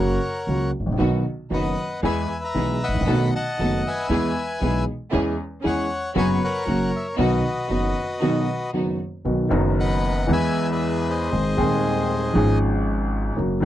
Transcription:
Already playing: upright bass F#1, grand piano F#2 C#3 F#3 A#3 F#4, bandoneon A#4 C#5 F#5
0.47 upright bass C#2, grand piano C#2 C#3 F#3 A#3 F#4
0.80 upright bass G#1, grand piano G#1
0.86 grand piano A1, upright bass A1
0.92 upright bass A#1, grand piano A#1
0.98 grand piano B1 B2 D#3 F#3 B3 F#4, upright bass B1, string section B3 D#4 F#4
1.50 grand piano F#1 F#2 D#3 F#3 B3 F#4, upright bass F#1, string section B3 D#4 F#4, bandoneon B4 D#5 F#5
2.02 upright bass E2, grand piano E2 E3 G#3 B3 G#4, string section B3 E4 G#4, bandoneon B4 E5 G#5
2.44 bandoneon E5 A#5
2.54 grand piano B1 B2 E3 G#3 B3 G#4, upright bass B1, string section B3 E4 G#4
2.83 bandoneon D#5 F#5 B5
2.88 grand piano G#1, upright bass G#1
2.94 grand piano A1, upright bass A1
3.01 grand piano A#1, upright bass A#1
3.06 upright bass B1, grand piano B1 B2 D#3 A3 B3 F#4, string section B3 D#4 A4
3.35 bandoneon D#5 F#5 A5
3.58 upright bass F#1, grand piano F#1 F#2 D#3 A3 B3 F#4, string section B3 D#4 A4
3.87 bandoneon B4 E5 G#5
4.09 upright bass E2, grand piano E2 E3 G#3 B3 G#4, string section B3 E4 G#4
4.61 upright bass B1, grand piano B1 B2 E3 G#3 B3 G#4, string section B3 E4 G#4
5.11 grand piano E2 E3 G#3 C#4 G#4, upright bass E2, string section C#4 E4 G#4
5.62 grand piano E2 E3 G#3 C#4 G#4, upright bass E2, string section C#4 E4 G#4, bandoneon F#5
5.67 bandoneon C#5
6.14 upright bass F#1, grand piano F#2 C#3 F#3 B3 F#4, string section B3 C#4 F#4, bandoneon B4 C#5 G#5
6.44 bandoneon A#4 C#5 F#5
6.66 upright bass F#1, grand piano F#2 C#3 F#3 A#3 F#4, string section A#3 C#4 F#4
6.96 bandoneon E5
7.16 grand piano B1 B2 D#3 F#3 B3 F#4, upright bass B1, string section B3 D#4 F#4, bandoneon B4
7.21 bandoneon F#4 D#5
7.68 upright bass F#1, grand piano F#1 F#2 D#3 F#3 B3 F#4, string section B3 D#4 F#4
8.20 grand piano B1 B2 D#3 F#3 B3 F#4, string section B3 D#4 F#4
8.72 grand piano F#1 F#2 D#3 F#3 B3 F#4, string section B3 D#4 F#4
9.25 grand piano B1 B2 D#3 F#3 B3 F#4, upright bass B1
9.49 grand piano F#1 F#2 D#3 F#3 B3 F#4, upright bass F#1
9.80 bandoneon B4 D#5 F#5
10.27 upright bass E2, grand piano E2 E3 G#3 B3 G#4
10.32 bandoneon B4 E5 G#5
10.71 bandoneon G#4 B4 E5
11.09 bandoneon G#4 C5 D#5
11.31 grand piano G#1 G#2 D#3 G#3 C4 G#4, upright bass G#1
11.55 grand piano D#1 D#2 D#3 G#3 C4, upright bass D#2
11.60 grand piano G#4
12.33 grand piano G#1 G#2 F3 G#3 C#4 G#4, upright bass G#1
13.36 upright bass F#1, grand piano F#2 C#3 F#3 A#3 F#4
13.60 grand piano C#3 F#3

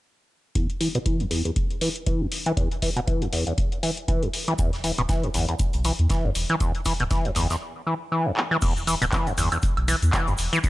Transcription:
0.55 acid bass E2, kick, closed hi-hat
0.70 closed hi-hat
0.81 acid bass E3, open hi-hat
0.95 acid bass B2, closed hi-hat
1.06 acid bass E3, kick, closed hi-hat
1.20 acid bass E2, closed hi-hat
1.31 acid bass E2, open hi-hat
1.45 acid bass E2, closed hi-hat
1.56 kick, closed hi-hat
1.71 closed hi-hat
1.81 acid bass E3, open hi-hat
1.96 closed hi-hat
2.06 acid bass E3, kick, closed hi-hat
2.21 acid bass E2
2.32 open hi-hat
2.46 acid bass E3, closed hi-hat
2.57 acid bass E2, kick, closed hi-hat
2.71 closed hi-hat
2.82 acid bass E3, kick, open hi-hat
2.96 acid bass B2, closed hi-hat
3.07 acid bass E3, kick, closed hi-hat
3.22 acid bass E2, closed hi-hat
3.33 acid bass E2, open hi-hat
3.47 acid bass E2, closed hi-hat
3.58 kick, closed hi-hat
3.72 closed hi-hat
3.83 acid bass E3, open hi-hat
3.97 closed hi-hat
4.08 acid bass E3, kick, closed hi-hat
4.23 acid bass E2, closed hi-hat
4.33 open hi-hat
4.48 acid bass E3, closed hi-hat
4.59 analog synth bass E1, acid bass E2, kick, closed hi-hat, shaker
4.73 snare, closed hi-hat
4.84 acid bass E3, open hi-hat, shaker
4.98 analog synth bass D1, acid bass B2, closed hi-hat
5.09 acid bass E3, kick, snare, closed hi-hat, shaker
5.23 acid bass E2, closed hi-hat
5.34 analog synth bass G1, acid bass E2, open hi-hat, shaker
5.49 acid bass E2, closed hi-hat
5.59 kick, closed hi-hat, shaker
5.73 analog synth bass B1, closed hi-hat
5.84 acid bass E3, open hi-hat, shaker
5.99 analog synth bass E2, closed hi-hat
6.10 acid bass E3, kick, snare, closed hi-hat, shaker
6.24 analog synth bass G1, acid bass E2
6.35 analog synth bass E1, open hi-hat, shaker
6.49 acid bass E3, closed hi-hat
6.60 acid bass E2, kick, closed hi-hat, shaker
6.75 closed hi-hat
6.85 acid bass E3, kick, snare, open hi-hat, shaker
7.00 analog synth bass D1, acid bass B2, closed hi-hat
7.11 acid bass E3, kick, snare, closed hi-hat, shaker
7.25 acid bass E2, closed hi-hat
7.35 analog synth bass G1, acid bass E2, snare, open hi-hat, shaker
7.50 acid bass E2, snare, closed hi-hat, shaker
7.87 acid bass E3
8.12 acid bass E3
8.26 acid bass E2
8.37 clap
8.51 acid bass E3
8.62 analog synth bass E1, acid bass E2, kick, closed hi-hat, crash, shaker
8.76 closed hi-hat, shaker
8.87 acid bass E3, open hi-hat, shaker
9.02 analog synth bass D1, acid bass B2, closed hi-hat, shaker
9.12 acid bass E3, kick, clap, closed hi-hat, shaker
9.27 acid bass E2, closed hi-hat, shaker
9.38 analog synth bass G1, acid bass E2, open hi-hat, shaker
9.52 acid bass E2, closed hi-hat, high woodblock, shaker
9.62 kick, closed hi-hat, shaker
9.77 analog synth bass B1, closed hi-hat, high woodblock
9.88 acid bass E3, open hi-hat, shaker
10.02 analog synth bass E2, closed hi-hat, shaker
10.13 acid bass E3, kick, clap, closed hi-hat, shaker
10.27 analog synth bass G1, acid bass E2, closed hi-hat, shaker
10.38 analog synth bass E1, open hi-hat, shaker
10.53 acid bass E3, closed hi-hat, shaker
10.64 acid bass E2, kick, closed hi-hat, shaker

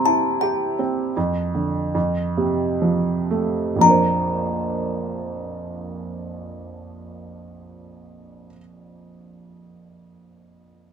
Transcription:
Already playing: felt piano C3 G3 C4
0.05 felt piano E4, music box A5
0.41 felt piano G4, music box G5
0.79 felt piano C4
1.17 felt piano F2
1.55 felt piano D3
1.95 felt piano F2
2.37 felt piano C3
2.82 felt piano F3
3.31 felt piano A3
3.76 felt piano A#1 F2
3.81 felt piano F3 D4, music box A#5
3.86 felt piano A#4 C5

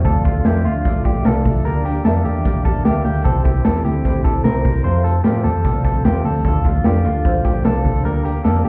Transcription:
0.05 picked electric bass D2, twelve-string acoustic guitar D3 F3 A3 D4, synth keys F4 A4 D5, clean electric guitar A4, kick, closed hi-hat
0.24 twelve-string acoustic guitar F3 A3 D4, clean electric guitar F4, kick, closed hi-hat
0.45 picked electric bass F2, twelve-string acoustic guitar D3 F3 A3 D4, synth keys F4 A4 E5, clean electric guitar G4, snare, closed hi-hat
0.64 picked electric bass D2, twelve-string acoustic guitar F3 A3 D4, clean electric guitar F4, closed hi-hat
0.85 twelve-string acoustic guitar D3 F3 A3, synth keys F4 A4 D5, kick, closed hi-hat
0.89 twelve-string acoustic guitar D4
1.05 twelve-string acoustic guitar F3 A3 D4, clean electric guitar G4, kick, closed hi-hat
1.24 picked electric bass C2, twelve-string acoustic guitar D3 F3 A3 D4, synth keys F4 A4 D5, clean electric guitar A4, snare, closed hi-hat
1.45 picked electric bass C2, twelve-string acoustic guitar F3 A3 D4, kick, open hi-hat
1.65 picked electric bass D2, twelve-string acoustic guitar D3 G3 A#3 D4, synth keys G4 A#4 D5, clean electric guitar A#4, closed hi-hat
1.85 twelve-string acoustic guitar G3 A#3 D4, clean electric guitar G4, closed hi-hat
2.05 picked electric bass F2, twelve-string acoustic guitar D3 G3 A#3 D4, synth keys G4 A#4 E5, clean electric guitar A4, snare, closed hi-hat
2.25 picked electric bass E2, twelve-string acoustic guitar G3 A#3 D4, clean electric guitar G4, closed hi-hat
2.45 twelve-string acoustic guitar D3 G3 A#3 D4, synth keys G4 A#4 D5, kick, closed hi-hat
2.65 twelve-string acoustic guitar G3 A#3 D4, clean electric guitar A4, kick, closed hi-hat
2.85 picked electric bass D2, twelve-string acoustic guitar D3 G3 A#3 D4, clean electric guitar G4, synth keys G4 A#4 E5, snare, closed hi-hat
3.04 picked electric bass D2, twelve-string acoustic guitar G3 A#3 D4, clean electric guitar G4, open hi-hat
3.24 picked electric bass C2, twelve-string acoustic guitar C3 G3 C4 E4, synth keys E4 G4 C5, clean electric guitar A4, kick, closed hi-hat
3.45 twelve-string acoustic guitar G3 C4 E4, clean electric guitar G4, kick, closed hi-hat
3.64 picked electric bass E2, twelve-string acoustic guitar C3 G3 C4 E4, synth keys E4 G4 A4, clean electric guitar A4, snare, closed hi-hat
3.84 picked electric bass D2, twelve-string acoustic guitar G3 C4 E4, clean electric guitar G4, closed hi-hat
4.04 twelve-string acoustic guitar C3 G3 C4 E4, synth keys E4 G4 C5, kick, closed hi-hat
4.24 twelve-string acoustic guitar G3 C4 E4, clean electric guitar A4, kick, closed hi-hat
4.44 picked electric bass C2, twelve-string acoustic guitar C3 G3 C4 E4, synth keys E4 G4 C5, clean electric guitar A#4, snare, closed hi-hat
4.64 picked electric bass C2, twelve-string acoustic guitar G3 C4 E4, kick, open hi-hat
4.84 twelve-string acoustic guitar F2 C3 F3 A3 C4, picked electric bass F2, synth keys F4 A4 C5, clean electric guitar C5, closed hi-hat
5.04 twelve-string acoustic guitar F3 A3 C4, clean electric guitar A4, closed hi-hat
5.24 twelve-string acoustic guitar F2 C3 F3 A3 C4, picked electric bass A2, synth keys F4 A4 D5, clean electric guitar G4, snare, closed hi-hat
5.44 picked electric bass F2, twelve-string acoustic guitar A3 C4, clean electric guitar A4, closed hi-hat
5.48 twelve-string acoustic guitar F3
5.64 picked electric bass C2, twelve-string acoustic guitar C3 F3 A3 C4, synth keys F4 A4 D5, kick, closed hi-hat
5.84 picked electric bass C2, twelve-string acoustic guitar F3 A3 C4, clean electric guitar A4, kick, closed hi-hat
6.04 picked electric bass E2, twelve-string acoustic guitar F2 C3 F3 A3 C4, synth keys F4 A4 D5, clean electric guitar G4, snare, closed hi-hat
6.24 picked electric bass D2, twelve-string acoustic guitar F3 A3 C4, clean electric guitar A4, open hi-hat
6.44 picked electric bass D2, twelve-string acoustic guitar D3 F3 A3 D4, synth keys F4 A4 D5, clean electric guitar A4, kick, closed hi-hat
6.64 twelve-string acoustic guitar F3 A3 D4, clean electric guitar F4, kick, closed hi-hat
6.84 picked electric bass F2, twelve-string acoustic guitar D3 F3 A3 D4, synth keys F4 A4 D5, clean electric guitar G4, snare, closed hi-hat
7.05 picked electric bass D2, twelve-string acoustic guitar F3 A3 D4, clean electric guitar F4, closed hi-hat
7.23 twelve-string acoustic guitar D3 F3 A3 D4, synth keys F4 A4 C5, kick, closed hi-hat
7.43 twelve-string acoustic guitar F3 A3 D4, clean electric guitar G4, kick, snare, closed hi-hat
7.63 picked electric bass C2, twelve-string acoustic guitar D3 F3 A3 D4, synth keys F4 A4 D5, clean electric guitar A4, snare, closed hi-hat
7.84 picked electric bass C2, twelve-string acoustic guitar F3 A3 D4, kick, open hi-hat
8.03 picked electric bass D2, twelve-string acoustic guitar D3 G3 A#3 D4, synth keys G4 A#4 D5, clean electric guitar A#4, closed hi-hat
8.25 twelve-string acoustic guitar G3 A#3 D4, clean electric guitar G4, closed hi-hat
8.44 picked electric bass F2, twelve-string acoustic guitar D3 G3 A#3 D4, synth keys G4 A#4 D5, clean electric guitar A4, snare, closed hi-hat
8.64 picked electric bass E2, twelve-string acoustic guitar A#3 D4, clean electric guitar G4, closed hi-hat

